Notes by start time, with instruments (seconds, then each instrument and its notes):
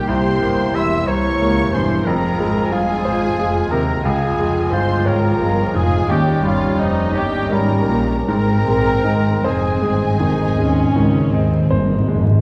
Already playing: grand piano D#2 A#2 A#3 D#4 A#4, viola section G3 G4, french horn section A#3, oboe G4
0.07 double bass section C2, grand piano C2, cello section C3, french horn section E4, violin section C5 C6, clarinet C5, oboe C5, flute G5
0.42 double bass section G1, cello section G2, grand piano A#3
0.75 double bass section E1, cello section E2, grand piano E4, clarinet E5, oboe E5, violin section E5 E6, flute C6
1.07 cello section C2, double bass section C2, viola section E3 G4, grand piano C5, violin section C#5 C#6, clarinet C#5, oboe C#5, flute A#5
1.40 double bass section C#2, cello section C#2, grand piano A#3
1.72 double bass section E1, cello section E2, grand piano G2, clarinet C5, violin section C5 C6, oboe C5, flute G#5
2.04 double bass section F1, cello section F2, grand piano F2, viola section F3 F4, french horn section G#3 F4, clarinet A#4, oboe A#4, violin section A#4 A#5, flute G5
2.39 double bass section G#1, cello section G#2, grand piano G#3
2.71 double bass section G1, cello section G2, grand piano F4, violin section G#4 G#5, clarinet G#4, oboe G#4, flute F5
3.04 double bass section G#1, cello section G#2, viola section F3, grand piano C5
3.36 double bass section F1, cello section F2, grand piano G#3
3.69 cello section D#2, double bass section D#2, grand piano C3, clarinet A#4, violin section A#4 A#5, oboe A#4, flute G5
4.02 cello section C#2, double bass section C#2, grand piano C#2, viola section G#3 F4, french horn section G#3 F4, violin section G#4 G#5, clarinet G#4, flute F5
4.06 oboe G#4
4.38 double bass section F1, cello section F2, grand piano G#3
4.71 double bass section G1, cello section G2, grand piano F4, violin section C5 C6, clarinet C5, oboe C5, flute G#5
5.05 double bass section G#1, cello section G#2, viola section F3, clarinet A#4, oboe A#4, violin section A#4 A#5, grand piano C#5, flute G5
5.41 double bass section G1, cello section G2, grand piano G#3
5.74 double bass section F1, cello section F2, grand piano G#2, clarinet G#4, violin section G#4 G#5, oboe G#4, flute F5
6.08 double bass section D#2, grand piano D#2, cello section D#2, french horn section G3 C#4, viola section G3 D#4, clarinet G4, violin section G4 G5, flute D#5
6.12 oboe G4
6.42 double bass section G1, cello section G2, grand piano G3, clarinet F4, violin section F4 F5
6.46 oboe F4, flute C#5
6.77 double bass section F1, cello section F2, clarinet D#4, violin section D#4 D#5, grand piano D#4, flute C5
6.82 oboe D#4
7.13 double bass section G1, cello section G2, french horn section G3 C#4, clarinet G4, violin section G4, grand piano C#5
7.17 oboe G4, flute D#5, violin section G5
7.50 double bass section G#1, cello section G#2, grand piano G3, clarinet A#4, violin section A#4 A#5, flute G5
7.55 oboe A#4
7.89 double bass section A#1, grand piano A#2, cello section A#2
8.26 double bass section G#1, timpani G#2, cello section G#2, grand piano G#2, viola section G#3 C4, french horn section G#3, violin section A#4 A#5, clarinet A#4, oboe A#4
8.30 french horn section C4, flute G5
8.38 timpani G#2
8.55 timpani G#2
8.62 timpani G#2
8.67 double bass section A#1, timpani G#2, cello section A#2, grand piano G#3
8.81 timpani G#2
8.89 timpani G#2
8.99 timpani G#2
9.04 double bass section G#1, cello section G#2, timpani G#2, grand piano D#4
9.16 timpani G#2
9.26 timpani G#2
9.42 double bass section F1, cello section F2, timpani G#2, viola section C4, oboe G#4, violin section G#4, clarinet G#4, grand piano C5, flute D#5
9.47 french horn section G#3 C4, violin section G#5
9.51 timpani G#2
9.59 timpani G#2
9.67 timpani G#2
9.76 timpani G#2
9.82 double bass section G1, cello section G2, timpani G#2, grand piano G#3
9.94 timpani G#2
10.02 timpani G#2
10.10 timpani G#2
10.18 double bass section F1, cello section F2, timpani G#2, grand piano D#3, viola section D#4
10.25 timpani G#2
10.33 timpani G#2
10.42 timpani G#2
10.51 timpani G#2
10.58 cello section D#2, double bass section D#2, timpani G#2, grand piano G#3, viola section C#4
10.68 timpani G#2
10.75 timpani G#2
10.84 timpani G#2
10.91 timpani G#2
10.96 cello section C#2, double bass section C#2, timpani G#2, grand piano D#3
11.08 timpani G#2
11.16 timpani G#2
11.25 timpani G#2
11.32 double bass section D#2, cello section D#2, timpani G#2, viola section C4, grand piano D#4
11.41 timpani G#2
11.50 timpani G#2
11.58 timpani G#2
11.67 timpani G#2, viola section A#3, grand piano C5
11.71 double bass section G1, cello section G2, timpani G#2
11.83 timpani G#2
11.91 timpani G#2
11.99 timpani G#2
12.07 double bass section F1, cello section F2, timpani G#2, grand piano G#3
12.15 timpani G#2
12.23 timpani G#2
12.31 timpani G#2